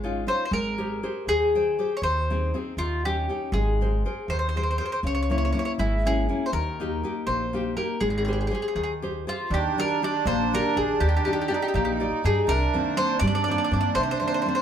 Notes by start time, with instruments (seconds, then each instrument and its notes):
Already playing: upright bass G#1, nylon-string guitar G#3, mandolin C#5
0.04 nylon-string guitar C#4 D#4 F4
0.27 nylon-string guitar C#4 D#4 F4, mandolin C5
0.45 mandolin C5
0.51 upright bass G#1, nylon-string guitar G#3, mandolin A#4
0.78 nylon-string guitar G4 G#4 C5
1.03 nylon-string guitar G4 G#4 C5
1.27 upright bass D#2, nylon-string guitar D#3, mandolin G#4
1.55 nylon-string guitar G#4 C5 G5
1.79 nylon-string guitar G4 G#4 C5
1.97 mandolin C#5
2.02 upright bass D#2, nylon-string guitar D#3, mandolin C5
2.30 nylon-string guitar C4 D#4 G#4
2.54 nylon-string guitar C4 D#4 G#4
2.77 upright bass D#2, nylon-string guitar D#3, mandolin F4
3.05 nylon-string guitar C#4 D#4 G4, mandolin G4
3.29 nylon-string guitar C#4 D#4 G4
3.52 upright bass G#1, nylon-string guitar G#3, mandolin G#4
3.81 nylon-string guitar G#4 A#4 C5
4.05 nylon-string guitar G#4 A#4 C5
4.28 upright bass D#2, nylon-string guitar D#3, mandolin C5
4.39 mandolin C5
4.49 mandolin C5
4.56 nylon-string guitar G#4 A#4 C5, mandolin C5
4.63 mandolin C5
4.71 mandolin C5
4.78 nylon-string guitar G#4 A#4 C5, mandolin C5
4.86 mandolin C5
4.92 mandolin C5
5.03 upright bass C#2, nylon-string guitar C#3, mandolin C#5
5.15 mandolin C#5
5.23 mandolin C#5
5.30 nylon-string guitar A#3 C#4 E4, mandolin C#5
5.38 mandolin C#5
5.45 mandolin C#5
5.53 nylon-string guitar A#3 C#4 E4, mandolin C#5
5.59 mandolin C#5
5.65 mandolin C#5
5.78 upright bass G#1, nylon-string guitar G#3, mandolin E4
6.05 nylon-string guitar A#3 C#4 E4, mandolin G#4
6.29 nylon-string guitar A#3 C#4 E4
6.46 mandolin C5
6.53 upright bass D#2, nylon-string guitar D#3, mandolin A#4
6.80 nylon-string guitar A#3 D#4 G4
7.04 nylon-string guitar A#3 D#4 G4
7.27 upright bass A#1, nylon-string guitar A#3, mandolin C5
7.53 nylon-string guitar A#3 D#4 G4
7.76 nylon-string guitar A#3 D#4 G4, mandolin A#4
8.01 upright bass G#1, nylon-string guitar G#3, mandolin G#4
8.10 mandolin G#4
8.18 mandolin G#4
8.25 nylon-string guitar G4 G#4 C5, mandolin G#4
8.33 mandolin G#4
8.41 mandolin G#4
8.47 nylon-string guitar G4 G#4, mandolin G#4
8.52 mandolin G#4, nylon-string guitar C5
8.62 mandolin G#4
8.68 mandolin G#4
8.75 upright bass D#2, nylon-string guitar D#3, mandolin G#4
8.83 mandolin G#4
9.02 nylon-string guitar G4 G#4 C5
9.27 mandolin F4, nylon-string guitar G4 G#4 C5
9.50 upright bass D#2, nylon-string guitar D#3, accordion D4, mandolin G4
9.78 nylon-string guitar D#3 D4 G4, mandolin A#4
10.02 nylon-string guitar D#3 D4 G4, mandolin D5
10.25 upright bass A#1, nylon-string guitar A#3, mandolin C5
10.53 nylon-string guitar D#3 D4 G4, mandolin A#4
10.76 upright bass A#1, nylon-string guitar D#3 D4 G4, mandolin G#4
11.00 upright bass D#2, nylon-string guitar D#3, mandolin G4
11.09 mandolin G4
11.17 mandolin G4
11.25 nylon-string guitar D4 D#4 G4, mandolin G4
11.33 mandolin G4
11.41 mandolin G4
11.48 nylon-string guitar D#4 G4 D5, mandolin G4
11.53 accordion D#4, mandolin G4
11.62 mandolin G4
11.68 mandolin G4
11.74 upright bass A#1, nylon-string guitar A#3, mandolin G4
11.85 mandolin G4
12.00 nylon-string guitar D#4 G4 D5
12.24 upright bass G2, nylon-string guitar D4 D#4 G4, mandolin G#4
12.47 upright bass C2, nylon-string guitar C3, accordion D4, mandolin A#4
12.74 nylon-string guitar D#3 A#3 C4
12.97 nylon-string guitar D#3 A#3 C4, mandolin C5
13.19 upright bass G2, nylon-string guitar G3, mandolin D5
13.27 mandolin D5
13.35 mandolin D5
13.44 nylon-string guitar A#3, mandolin D5
13.49 nylon-string guitar D#3 C4, mandolin D5
13.58 mandolin D5
13.64 mandolin D5
13.71 upright bass G2, nylon-string guitar D#3 A#3 C4, mandolin D5
13.81 mandolin D5
13.95 upright bass C2, nylon-string guitar C3, mandolin C5
14.03 mandolin C5
14.11 mandolin C5
14.20 nylon-string guitar D#3 A#3 C4, mandolin C5
14.28 mandolin C5
14.34 mandolin C5
14.42 mandolin C5
14.46 nylon-string guitar D#3 A#3 C4, mandolin C5
14.55 mandolin C5